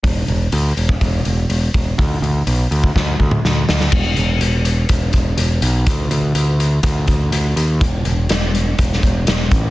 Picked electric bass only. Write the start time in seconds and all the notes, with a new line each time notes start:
0.03 E1
0.28 E1
0.53 D2
0.77 E1
1.01 E1
1.26 E1
1.49 E1
1.74 E1
1.98 D2
2.22 D2
2.47 B1
2.71 D2
2.95 D2
3.19 D2
3.45 D2
3.69 D2
3.92 E1
4.17 E1
4.41 E1
4.89 E1
5.13 E1
5.37 E1
5.62 B1
5.87 D2
6.11 D2
6.35 D2
6.83 D2
7.08 D2
7.32 D2
7.56 D#2
7.81 E1
8.05 E1
8.30 E1
8.79 E1
9.03 E1
9.27 E1
9.51 A1